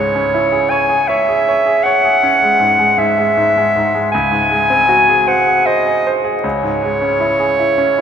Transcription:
Already playing: C#2 G#2 G#3 C#5
0.15 C#4
0.34 E4
0.52 G#4
0.70 C#5 G#5
0.89 G#4
1.08 C#5 E5
1.28 G#4
1.48 C#5
1.66 G#4
1.83 C#5 F#5
2.05 G#4
2.23 C#4
2.43 G#3
2.60 G#2
2.79 G#3
2.98 G#2 E5
3.18 G#3
3.37 G#2
3.57 G#3
3.76 G#2
3.94 G#3
4.12 C#2 G#5
4.31 G#2
4.51 G#3
4.70 C4
4.89 F#4
5.09 G#4
5.27 C5 F#5
5.47 G#4
5.66 C5 D#5
5.86 G#4
6.07 C5
6.24 G#4
6.42 C#2 C#5
6.63 G#2
6.83 G#3
7.02 C#4
7.20 E4
7.40 G#4
7.60 E4
7.78 C#4
7.98 E4

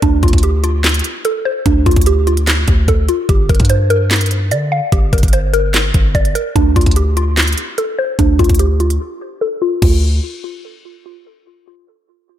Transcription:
0.02 D2 D4, kick, closed hi-hat
0.23 D2 F4, kick, closed hi-hat
0.28 closed hi-hat
0.33 D2, kick, closed hi-hat
0.38 closed hi-hat
0.43 G4, closed hi-hat
0.64 F4, closed hi-hat
0.84 snare, clap, closed hi-hat
0.89 closed hi-hat
0.94 closed hi-hat
0.99 closed hi-hat
1.04 closed hi-hat
1.25 A4, closed hi-hat
1.45 C5
1.66 D2 D4, kick, closed hi-hat
1.86 D2 F4, kick, closed hi-hat
1.91 closed hi-hat
1.96 D2, kick, closed hi-hat
2.01 closed hi-hat
2.06 G4, closed hi-hat
2.27 F4, closed hi-hat
2.37 closed hi-hat
2.47 snare, clap, closed hi-hat
2.68 D2, kick, closed hi-hat
2.88 D2 A4, kick, closed hi-hat
3.08 F4, closed hi-hat
3.29 G1 G4, kick, closed hi-hat
3.49 G1 A#4, kick, closed hi-hat
3.55 closed hi-hat
3.60 G2, kick, closed hi-hat
3.65 closed hi-hat
3.69 C5, closed hi-hat
3.90 A#4, closed hi-hat
4.11 snare, clap, closed hi-hat
4.16 closed hi-hat
4.21 closed hi-hat
4.26 closed hi-hat
4.31 closed hi-hat
4.51 D3 D5, closed hi-hat
4.72 F5
4.92 G1 G4, kick, closed hi-hat
5.13 G1 A#4, kick, closed hi-hat
5.18 closed hi-hat
5.23 G1, kick, closed hi-hat
5.28 closed hi-hat
5.33 C5, closed hi-hat
5.53 A#4, closed hi-hat
5.74 snare, clap, closed hi-hat
5.94 G1, kick, closed hi-hat
6.15 G1 D5, kick, closed hi-hat
6.25 closed hi-hat
6.35 A#4, closed hi-hat
6.56 D2 D4, kick, closed hi-hat
6.76 D2 F4, kick, closed hi-hat
6.81 closed hi-hat
6.86 D2, kick, closed hi-hat
6.91 closed hi-hat
6.96 G4, closed hi-hat
7.17 F4, closed hi-hat
7.37 snare, clap, closed hi-hat
7.42 closed hi-hat
7.47 closed hi-hat
7.53 closed hi-hat
7.58 closed hi-hat
7.78 A4, closed hi-hat
7.99 C5
8.19 D2 D4, kick, closed hi-hat
8.39 D2 F4, kick, closed hi-hat
8.44 closed hi-hat
8.49 D2, kick, closed hi-hat
8.55 closed hi-hat
8.59 G4, closed hi-hat
8.80 F4, closed hi-hat
8.90 closed hi-hat
9.41 A4
9.62 F4
9.82 D2 F4, kick, crash

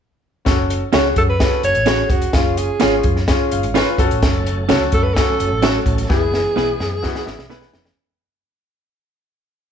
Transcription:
0.45 F#1 C#4 F#4 A4, kick, snare, closed hi-hat
0.70 closed hi-hat
0.92 C#2 C#4 F#4 G#4 A4 C#5, snare, closed hi-hat
1.16 F#2 A4, kick, closed hi-hat
1.29 B4
1.39 C#4 F#4 G#4, kick, snare, closed hi-hat
1.46 A4
1.63 F#1 C#5, closed hi-hat
1.75 A1, closed hi-hat
1.86 C#4 F#4 G#4 A4 C#5, snare, closed hi-hat
2.10 F1 F#4, kick, closed hi-hat
2.22 closed hi-hat
2.33 F#1 C#4 F4 G#4, kick, snare, closed hi-hat
2.57 G#4, closed hi-hat
2.80 G#1 C#4 F4 G#4 C#5, snare, closed hi-hat
3.03 F#2, kick, closed hi-hat
3.16 snare
3.28 C#4 F4 G#4, kick, snare, closed hi-hat
3.51 F#1 F5, closed hi-hat
3.63 G#1, closed hi-hat
3.74 C#4 F4 G#4 B4 C#5 G#5, snare, closed hi-hat
3.98 F#1 C#4 F#4 A4 A5, kick, closed hi-hat
4.11 A1, closed hi-hat
4.23 F#1 F#3 A3 C#4 A4, kick, snare, closed hi-hat
4.46 closed hi-hat
4.69 C#2 C#4 F#4 A4 C#5, snare, closed hi-hat
4.92 F#2 A4, kick, closed hi-hat
5.03 B4
5.14 C#4 F#4 A4 G#5, kick, snare, closed hi-hat
5.40 F#1, closed hi-hat
5.51 A1
5.62 C#4 F#4 A4 C#5, snare, closed hi-hat
5.86 A1, kick, closed hi-hat
5.98 closed hi-hat
6.09 F#1 E3 G#3 B3 E4 G#4, kick, snare
6.34 snare
6.56 B1 B3 E4 G#4 B4, snare
6.80 F#2, snare
7.02 B3 E4 F#4, kick, snare
7.15 snare
7.26 G#1 E5, snare
7.38 B1, snare
7.50 B3 E4 G#4 B4 G#5, snare
7.62 snare
7.73 F1, snare
7.85 snare

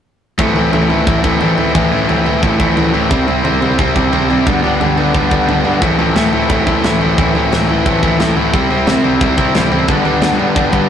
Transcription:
0.38 A1 A2 E3 A3 C4 E4, kick, floor tom
0.55 A1 A2 E3 A3 C4 E4, floor tom
0.72 A1 A2 E3 A3 C4 E4, floor tom
0.88 A2 E3 A3 C4 E4, floor tom
1.06 A1 A2 E3 A3 C4 E4, kick, floor tom
1.23 A1 A2 E3 A3 C4 E4, kick, floor tom
1.40 A1 A2 E3 A3 C4 E4, floor tom
1.57 A2 E3 A3 C4 E4, floor tom
1.74 A1 A2 E3 A3 C4 E4, kick, floor tom
1.91 A1 A2 E3 A3 C4 E4, floor tom
2.08 A1 A2 E3 A3 C4 E4, floor tom
2.25 A2 E3 A3 C4 E4, floor tom
2.43 A1 A2 E3 A3 C4 E4, kick, floor tom
2.59 A1 A2 E3 A3 C4 E4, kick, floor tom
2.76 A1 A2 E3 A3 C4 E4, floor tom
2.93 A1 A2 E3 A3 C4 E4, floor tom
3.10 C2 C3 G3 C4 E4, kick, floor tom
3.27 C2 C3 G3 C4 E4, floor tom
3.44 C2 C3 G3 C4 E4, floor tom
3.62 C3 G3 C4 E4, floor tom
3.79 C2 C3 G3 C4 E4, kick, floor tom
3.96 C2 C3 G3 C4 E4, kick, floor tom
4.12 C2 C3 G3 C4 E4, floor tom
4.30 C3 G3 C4 E4, floor tom
4.47 G1 G2 D3 G3 B3 D4, kick, floor tom
4.63 G1 G2 D3 G3 B3 D4, floor tom
4.80 G1 G2 D3 G3 B3 D4, floor tom
4.97 G2 D3 G3 B3 D4, floor tom
5.14 G1 G2 D3 G3 B3 D4, kick, floor tom
5.31 G1 G2 D3 G3 B3 D4, kick, floor tom
5.48 G1 G2 D3 G3 B3 D4, floor tom
5.65 G1 G2 D3 G3 B3 D4, floor tom
5.81 A1 A2 E3 A3 C4 E4, kick, floor tom
5.98 A1 A2 E3 A3 C4 E4, floor tom
6.15 A1 A2 E3 A3 C4 E4, snare, floor tom
6.33 A2 E3 A3 C4 E4, floor tom
6.50 A1 A2 E3 A3 C4 E4, kick, floor tom
6.67 A1 A2 E3 A3 C4 E4, kick, floor tom
6.84 A1 A2 E3 A3 C4 E4, snare, floor tom
7.01 A2 E3 A3 C4 E4, floor tom
7.17 A1 A2 E3 A3 C4 E4, kick, floor tom
7.35 A1 A2 E3 A3 C4 E4, floor tom
7.52 A1 A2 E3 A3 C4 E4, snare, floor tom
7.69 A2 E3 A3 C4 E4, floor tom
7.85 A1 A2 E3 A3 C4 E4, kick, floor tom
8.02 A1 A2 E3 A3 C4 E4, kick, floor tom
8.19 A1 A2 E3 A3 C4 E4, snare, floor tom
8.36 A1 A2 E3 A3 C4 E4, floor tom
8.54 C2 C3 G3 C4 E4, kick, floor tom
8.70 C2 C3 G3 C4 E4, floor tom
8.87 C2 C3 G3 C4 E4, snare, floor tom
9.04 C3 G3 C4 E4, floor tom
9.21 C2 C3 G3 C4 E4, kick, floor tom
9.38 C2 C3 G3 C4 E4, kick, floor tom
9.54 A1 C3 G3 C4 E4, snare, floor tom
9.72 C3 G3 C4 E4, floor tom
9.88 G1 G2 D3 G3 B3 D4, kick, floor tom
10.05 G1 G2 D3 G3 B3 D4, floor tom
10.22 G1 G2 D3 G3 B3 D4, snare, floor tom
10.39 G2 D3 G3 B3 D4, floor tom
10.55 G1 G2 D3 G3 B3 D4, kick, floor tom
10.72 G1 G2 D3 G3 B3 D4, kick, floor tom

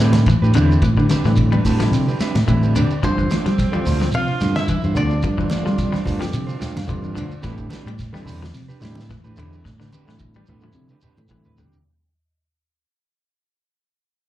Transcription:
0.00 A2 D3 G3 C4 D4 E4 G4 B4, shekere
0.12 snare, high conga, shekere
0.26 E3, kick, ride bell, high conga, shekere
0.42 A2 D4 G4 B4, shekere
0.54 E2 D3 G3 C4 D4 G4 B4, ride bell, low conga, shekere
0.58 E4
0.72 shekere
0.82 A2 E3, kick, ride bell, shekere
0.97 D3 D4 G4 B4, kick, shekere
1.09 C4 D4 G4 B4, snare, ride bell, high conga, shekere
1.24 A2 D3 E3 G3 C4 E4, snare, shekere
1.36 kick, ride bell, high conga, shekere
1.52 G3 D4 G4 B4, high conga, shekere
1.65 A2 C4 D4 G4 B4 A5, kick, snare, open hi-hat, low conga, shekere
1.80 D3 F3 G3 C4 E4, snare, ride bell, shekere
1.92 C3 G5, snare, ride bell, shekere
2.08 D4 G4 B4, shekere
2.20 C4 D4 G4 B4 E5, muted fingered electric bass stroke, snare, ride bell, shekere
2.35 A2, snare, ride bell, high conga, shekere
2.46 A2 D3 E3 G3 C4 E4 E5, kick, ride bell, high conga, shekere
2.63 D4 G4 B4, shekere
2.75 D3 C4 D4 G4 B4 D5, ride bell, low conga, shekere
2.91 muted fingered electric bass stroke, shekere
3.03 G2 D3 F3 G3 A3 C4 D4 F4 C5, kick, ride bell, shekere
3.18 E3 D4 F4 C5, kick, shekere
3.30 A3 D4 F4 C5, snare, ride bell, high conga, shekere
3.46 F3 G3, snare, ride bell, shekere
3.58 kick, snare, ride bell, shekere
3.71 D3 G3 C4 D4 F4 C5, high conga, shekere
3.86 D2 A3 D4 F4 C5, open hi-hat, high conga, low conga, shekere
4.00 F3, snare, shekere
4.12 C3 F5, ride bell, high conga, shekere
4.16 F4
4.27 D4 C5, shekere
4.40 G2 D3 G3 A3 C4 D4 F4 C5, snare, ride bell, low conga, shekere
4.55 E4 E5, snare, high conga, shekere
4.68 E3, kick, ride bell, high conga, shekere
4.82 G2 D4 F4 C5, high conga, shekere
4.94 D2 D3 G3 A3 C4 D4 F4 C5 D5, ride bell, low conga, shekere
5.10 shekere
5.22 G2 F3, kick, ride bell, shekere
5.38 E3 D4 F4 C5, kick, shekere
5.50 A3 D4 F4 C5, snare, ride bell, high conga, shekere
5.63 D3 F3 G3 C4 F4, snare, shekere
5.78 kick, snare, ride bell, shekere
5.92 G3 D4 F4 C5, snare, high conga, shekere
6.04 G2 A3 D4 F4 C5, kick, snare, open hi-hat, high conga, low conga, shekere
6.19 D3 F3 G3 C4 G4, snare, ride bell, shekere
6.33 C3, ride bell, shekere
6.47 D4 F4 C5, shekere
6.59 A3 D4 F4 C5 G5, muted fingered electric bass stroke, snare, ride bell, low conga, shekere
6.76 G2 F5, snare, ride bell, high conga, shekere
6.87 G2 D3 E3 G3 C4 F4 D5, kick, ride bell, high conga, low conga, shekere
7.02 D4 F4, high conga, shekere
7.14 D3 A3 D4 F4 C5, ride bell, low conga, shekere
7.31 muted fingered electric bass stroke, shekere
7.42 A2 D3 E3 G3 C4 D4 G4 B4, kick, snare, ride bell, shekere
7.46 E4
7.57 D4 G4, kick, shekere
7.69 C4 D4 G4 B4, high conga, shekere
7.73 snare, ride bell
7.86 A2 G3, ride bell, shekere
7.99 kick, snare, ride bell, high conga, shekere
8.13 D3 G3 C4 E4 G4 B4, snare, high conga, shekere
8.25 E2 C4 D4 G4 B4, open hi-hat, low conga, shekere
8.42 F3, snare, shekere
8.54 C3, snare, ride bell, shekere
8.68 D4 G4 B4, shekere
8.80 A2 D3 G3 C4 D4 E4 G4, low conga, shekere
8.85 snare, ride bell
8.95 high conga, shekere
8.99 snare
9.09 E3, kick, snare, ride bell, high conga, low conga, shekere
9.24 A2 D4 G4 B4, high conga, shekere
9.36 E2 D3 G3 C4 D4 E4 G4 B4, ride bell, low conga, shekere
9.53 shekere
9.65 A2, muted clean electric guitar stroke, kick, snare, shekere
9.80 D3 D4 G4 B4, snare, shekere
9.92 C4 D4 G4 B4, high conga, shekere
10.05 A2 D3 E3 G3 C4 E4, snare, shekere
10.19 kick, high tom, shekere
10.34 G3 D4 G4 B4, high conga, shekere
10.46 A2 C4 D4 B4, high tom, high conga, low conga, shekere
10.61 D3 F3 G3 C4 E4, mid tom, shekere
10.73 C3, shekere
10.88 D4 G4 B4, mid tom, shekere
11.01 C4 D4 G4 B4, muted fingered electric bass stroke, mid tom, low conga, shekere
11.17 A2, high conga, shekere
11.28 A2 D3 E3 G3 C4 E4, kick, mid tom, high conga, shekere
11.44 B4, floor tom, high conga, shekere
11.58 D3 C4 D4 G4, floor tom, low conga, shekere
11.73 muted fingered electric bass stroke, floor tom, shekere

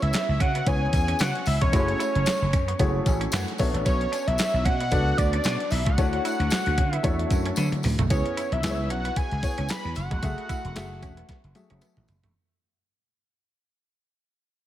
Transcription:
Already playing: B3 C#4 E4 G#4 C#5
0.02 C#2 E5, closed hi-hat
0.13 muted clean electric guitar stroke, snare, clap, closed hi-hat, tambourine
0.29 C#2
0.40 C#3 C#4 F#5, kick, closed hi-hat
0.55 B3, closed hi-hat
0.66 C#2 B3 C#4 E4 G#4 C#5 G#5, kick, closed hi-hat, tambourine
0.93 E2 G#5, muted clean electric guitar stroke, kick, closed hi-hat, tambourine
1.08 C#4, closed hi-hat
1.19 C#3 B3 F#5, snare, clap, closed hi-hat, tambourine
1.35 closed hi-hat
1.46 C#2 E5, muted clean electric guitar stroke, open hi-hat, tambourine
1.61 E1 G#3 C#5, kick, closed hi-hat
1.72 F#1 A3 E4 F#4 G#4 C#5, kick, closed hi-hat, tambourine
1.88 muted clean electric guitar stroke, closed hi-hat
2.00 E4, closed hi-hat, tambourine
2.15 F#1, closed hi-hat
2.26 muted clean electric guitar stroke, snare, clap, closed hi-hat, tambourine
2.42 F#1
2.53 F#2 C#4, kick, closed hi-hat, tambourine
2.68 B3, closed hi-hat
2.79 F#1 A3 B3 E4 F#4 G#4 C#5, kick, closed hi-hat, tambourine
3.06 A1 G#5, muted clean electric guitar stroke, kick, closed hi-hat, tambourine
3.21 C#4, closed hi-hat
3.32 F#2 B3 F#5, snare, clap, closed hi-hat, tambourine
3.48 closed hi-hat
3.58 B1 B3 D4 F#4 A4 C#5 E5, muted clean electric guitar stroke, kick, open hi-hat, tambourine
3.74 A1 A3, closed hi-hat
3.86 B1 B3 C#5, kick, closed hi-hat, tambourine
4.01 muted clean electric guitar stroke, closed hi-hat
4.12 D4, closed hi-hat, tambourine
4.27 B1 E5, closed hi-hat
4.38 muted clean electric guitar stroke, snare, clap, closed hi-hat, tambourine
4.54 B1
4.65 B2 C#4 F#5, kick, closed hi-hat
4.80 B3, closed hi-hat
4.91 C#2 B3 D4 F#4 A4 D5, kick, closed hi-hat, tambourine
5.17 D2 D5, muted clean electric guitar stroke, kick, closed hi-hat, tambourine
5.33 C#4, closed hi-hat
5.44 B2 B3, snare, clap, closed hi-hat, tambourine
5.60 closed hi-hat
5.71 B1 E5, muted clean electric guitar stroke, open hi-hat, tambourine
5.85 C#2 A3 F#5, kick, closed hi-hat
5.98 D2 A3 D4 E4 F#4 C#5, kick, closed hi-hat, tambourine
6.13 muted clean electric guitar stroke, closed hi-hat
6.25 E4, closed hi-hat, tambourine
6.39 D2, closed hi-hat
6.50 muted clean electric guitar stroke, snare, clap, closed hi-hat, tambourine
6.66 D2, closed hi-hat
6.78 D3 C#4, kick, closed hi-hat
6.93 B3 E5, closed hi-hat
7.03 E2 A3 B3 D4 E4 F#4 C#5, kick, closed hi-hat, tambourine
7.19 closed hi-hat
7.31 F#2, muted clean electric guitar stroke, kick, closed hi-hat, tambourine
7.45 C#4, closed hi-hat
7.56 D3 B3, closed hi-hat, high tom, tambourine
7.72 closed hi-hat, mid tom
7.83 D2, muted clean electric guitar stroke, mid tom, open hi-hat, tambourine
7.98 B1 A3, closed hi-hat, floor tom
8.10 C#2 B3 C#4 E4 G#4 C#5, kick, closed hi-hat, tambourine
8.25 muted clean electric guitar stroke, closed hi-hat
8.37 E4, closed hi-hat, tambourine
8.52 B1 E5, closed hi-hat
8.63 C#2 B3 E4 G#4 B4, muted clean electric guitar stroke, snare, clap, closed hi-hat, tambourine
8.70 C#5
8.90 B1 C#4 F#5, closed hi-hat
9.05 B3, closed hi-hat
9.16 B3 G#5, kick, closed hi-hat, tambourine
9.31 C#2, closed hi-hat
9.43 B3 E4 G#4 C#5, muted clean electric guitar stroke, kick, closed hi-hat, tambourine
9.58 C#2 C#4, closed hi-hat
9.69 B3 B5, snare, clap, closed hi-hat, tambourine
9.85 E2
9.95 F#1 F#5, muted clean electric guitar stroke, closed hi-hat, tambourine
10.11 E1 G#3, kick, closed hi-hat
10.22 F#1 A3 F#4 G#4 E5, kick, closed hi-hat, tambourine
10.38 muted clean electric guitar stroke, closed hi-hat
10.49 E4, kick, closed hi-hat, tambourine
10.65 E1, closed hi-hat
10.75 F#1 A3 F#4 G#4 E5, muted clean electric guitar stroke, snare, clap, closed hi-hat, tambourine
11.03 E1 C#4, kick, closed hi-hat, tambourine
11.17 B3, closed hi-hat
11.29 B3, kick, snare, closed hi-hat
11.44 F#1, closed hi-hat
11.55 A3 F#4 G#4 E5, muted clean electric guitar stroke, closed hi-hat, high tom, tambourine
11.70 F#1 C#4, closed hi-hat, high tom
11.81 B3, closed hi-hat, tambourine
11.97 A1, mid tom
12.08 F#1, muted clean electric guitar stroke, closed hi-hat, floor tom, tambourine
12.23 E1 A3, closed hi-hat, floor tom

